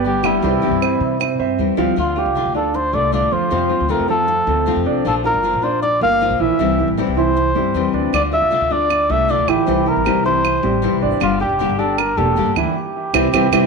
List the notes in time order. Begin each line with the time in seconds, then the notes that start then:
Already playing: G1 B3 B4 D5
0.04 D3 G3 B3 G4
0.23 D3 G3 B3 E4 G4 G5, claves
0.42 C2 C3 E3 G3 C4 E4 G4 G5
0.62 C2 E3 G3 C4 E4
0.71 G2
0.82 C4 C5 E5, claves
1.00 C3
1.20 C4 C5 E5, muted nylon-string guitar stroke, claves
1.39 G2 C4 C5 E5
1.58 E2 E3 G3 C4 E4
1.77 D2 E3 F3 G3 C4 E4 F4 F5
1.96 D2 D3 A3 D4 F4
2.16 A3 D4 F4 G4 F5
2.26 C2
2.35 D3 A3 D4 F4
2.45 D2
2.54 A3 D4 F4 A4 D5
2.74 C5, muted nylon-string guitar stroke
2.93 C2 A3 D4 F4 A4 D5
3.12 D3 A3 D4 F4 D5
3.22 D2
3.32 E2 F3 F4 C5
3.50 F2 C3 F3 A3 C4 F4
3.69 A3 C4 F4
3.80 D2
3.88 C3 F3 A3 C4 F4 A4 A#4
3.99 F2
4.08 F3 A3 C4 F4 A4
4.28 muted nylon-string guitar stroke
4.47 D2 A3 C4 F4 A4
4.66 C3 F3 A3 C4 F4
4.76 F2
4.86 C2 D4 D5
5.05 A#1 F3 A#3 D4 F4 A4
5.24 A#3 D4 F4 A#4 F5
5.34 G1
5.43 F3 A#3 D4 F4
5.53 A#1
5.62 A#3 D4 F4 C5 D5
5.82 D5, muted nylon-string guitar stroke
6.01 G1 A#3 D4 F4 A#4 F5
6.21 F3 A#3 D4 F4
6.30 A#1
6.40 A#1 E3 E4 E5
6.59 C2 C3 E3 G3 C4 E4
6.78 G3 C4 E4
6.88 A1
6.97 C3 E3 G3 C4 E4 G4
7.07 C2
7.17 E3 G3 C4 E4 C5
7.36 muted nylon-string guitar stroke
7.55 G2 G3 C4 E4 G4
7.74 E2 C3 E3 G3 C4 E4
7.94 D2 D4 D5
8.13 D2 D3 A3 D4 F4 D5, claves
8.32 A3 D4 F4 D5 E5
8.42 C2
8.51 D3 A3 D4 F4
8.61 D2
8.70 A3 D4 F4 D5
8.90 muted nylon-string guitar stroke, claves
9.09 C2 A3 D4 F4 A4 E5
9.28 D3 A3 D4 F4 D5
9.38 D2
9.48 A1 E3 E4 G4, claves
9.66 C2 C3 E3 G3 C4 E4
9.86 G3 C4 E4 A#4
9.96 A1
10.05 C3 E3 G3 C4 E4 G4, claves
10.15 C2
10.24 E3 G3 C4 E4 C5
10.44 muted nylon-string guitar stroke, claves
10.63 A1 G3 C4 E4 G4
10.82 C3 E3 G3 C4 E4
10.92 C2
11.02 G#1 D4 D5
11.20 G1 D3 G3 A#3 D4 F4 G4, claves
11.40 A#3 D4 G4 G5
11.49 E1
11.59 D3 G3 A#3 D4 G4
11.69 G1
11.78 A#3 D4 G4 A4 D5
11.98 A#4, muted nylon-string guitar stroke, claves
12.17 E1 A#3 D4 G4 A4
12.36 D3 G3 A#3 D4 G4
12.46 G1
12.55 D2 E3 E4, claves
12.76 G4
13.14 C2 E3 G3 C4 E4 G4, claves
13.32 C2 E3 G3 C4 E4 G4, claves
13.52 C2 E3 G3 C4 E4 G4, claves